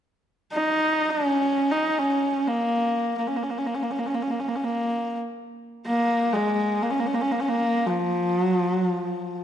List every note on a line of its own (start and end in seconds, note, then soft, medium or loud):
0.52 1.11 D#4 medium
1.10 1.72 C#4 medium
1.71 2.00 D#4 medium
1.98 2.49 C#4 medium
2.47 3.17 A#3 medium
3.18 3.28 A#3 soft
3.27 3.37 C#4 soft
3.36 3.44 A#3 soft
3.43 3.51 C#4 soft
3.50 3.59 A#3 soft
3.58 3.68 C#4 soft
3.66 3.76 A#3 soft
3.74 3.84 C#4 soft
3.82 3.92 A#3 soft
3.90 4.00 C#4 soft
3.99 4.07 A#3 soft
4.06 4.15 C#4 soft
4.14 4.23 A#3 soft
4.22 4.32 C#4 soft
4.30 4.41 A#3 soft
4.39 4.49 C#4 soft
4.48 4.57 A#3 medium
4.55 4.65 C#4 soft
4.64 5.18 A#3 medium
5.86 6.34 A#3 medium
6.33 6.84 G#3 medium
6.82 6.91 A#3 medium
6.90 7.01 C#4 medium
6.99 7.07 A#3 medium
7.06 7.15 C#4 medium
7.14 7.23 A#3 medium
7.21 7.32 C#4 medium
7.31 7.41 A#3 medium
7.40 7.50 C#4 medium
7.48 7.88 A#3 medium
7.87 8.41 F3 medium
8.41 8.56 F#3 medium
8.56 8.72 F3 medium
8.72 8.87 F#3 medium
8.87 9.40 F3 medium